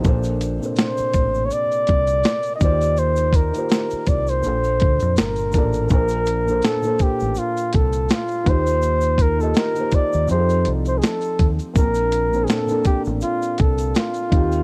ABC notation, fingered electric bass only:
X:1
M:4/4
L:1/16
Q:"Swing 16ths" 1/4=82
K:Bb
V:1 name="Fingered electric bass" clef=bass
B,,,3 z3 A,,,2 z2 C,,2 z2 E,,2- | E,,3 z3 C,,2 B,,,2 D,, F,, G,,,2 A,,,2 | B,,,4 z3 A,,, z2 C,,2 z2 E,,2- | E,,4 z3 E,, F,,2 C,,2 z2 E,, z |
B,,,4 z3 A,,, z2 C,,2 z2 E,,2 |]